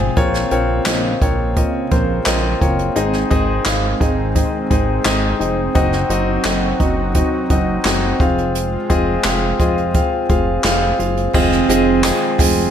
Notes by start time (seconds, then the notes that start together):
Already playing: G#1 F3 G#3 C4 F4 G#4 F5 G#5
0.16 A#1 A#2 C#3 A#3 C4 F4 A#4 C#5, kick, closed hi-hat
0.34 snare
0.51 A#1 C4 F4 A#4 C#5, closed hi-hat
0.85 A#1 C4 F4 A#4 D#5, snare, clap, closed hi-hat
1.21 A#1 C4 F4 A#4 C#5, kick, closed hi-hat
1.56 C4 F4 A#4 D#5, kick, closed hi-hat
1.91 A#1 C4 F4 A#4 C5, kick, closed hi-hat
2.26 A#1 C4 F4 A#4 D#5, snare, clap, closed hi-hat
2.61 F#1 C4 F4 A#4 C#5, kick, closed hi-hat
2.79 closed hi-hat
2.96 G#1 G#2 D#3 G#3 C4 D#4 G#4 D#5, closed hi-hat
3.13 snare
3.30 G#1 C4 D#4 G#4 D#5, kick, closed hi-hat
3.65 G#1 C4 D#4 G#4 F5, snare, clap, closed hi-hat
4.00 G#1 C4 D#4 G#4 D#5, kick, closed hi-hat
4.35 C4 D#4 G#4 D#5, kick, closed hi-hat
4.70 G#1 C4 D#4 G#4 D#5, kick, closed hi-hat
5.05 G#1 C4 D#4 G#4 D#5, snare, clap, closed hi-hat
5.40 F1 C4 D#4 G#4 D#5, closed hi-hat
5.75 F#1 F#3 C4 D#4 F#4 D#5, kick, closed hi-hat
5.93 snare
6.10 F#1 C4 D#4 F#4 D#5, closed hi-hat
6.44 F#1 C4 D#4 F#4 D#5, snare, clap, closed hi-hat
6.80 F#1 C4 D#4 F#4 D#5, kick, closed hi-hat
7.15 C4 D#4 F#4 D#5, kick, closed hi-hat
7.50 F#1 C4 D#4 F#4 D#5, kick, closed hi-hat
7.85 F#1 C4 D#4 F#4 D#5, snare, clap, closed hi-hat
8.20 F1 G#3 C4 F4 G#4 F5, kick, closed hi-hat
8.38 closed hi-hat
8.55 closed hi-hat
8.90 F1 C4 F4 G#4 D#5, kick, closed hi-hat
9.24 F1 C4 F4 G#4 F5, snare, clap, closed hi-hat
9.59 F1 C4 F4 G#4 D#5, kick, closed hi-hat
9.78 closed hi-hat
9.94 C4 F4 G#4 F5, kick, closed hi-hat
10.29 F1 C4 F4 G#4 F5, kick, closed hi-hat
10.64 F1 C4 F4 G#4 F5, snare, clap, closed hi-hat
10.99 F#1 C4 F4 G#4 F5, closed hi-hat
11.17 closed hi-hat
11.33 F1 F2 C3 D#3 G#3 C4 F4 G#4 D#5, kick, crash, tambourine
11.52 snare
11.69 F1 C4 F4 G#4 D#5, hi-hat pedal, open hi-hat, tambourine
12.03 D#3 G#3 C4 F4 G#4 D#5, snare, clap, hi-hat pedal, open hi-hat, tambourine
12.38 F1 D#3 G#3 C4 F4 G#4 D#5, kick, hi-hat pedal, open hi-hat, tambourine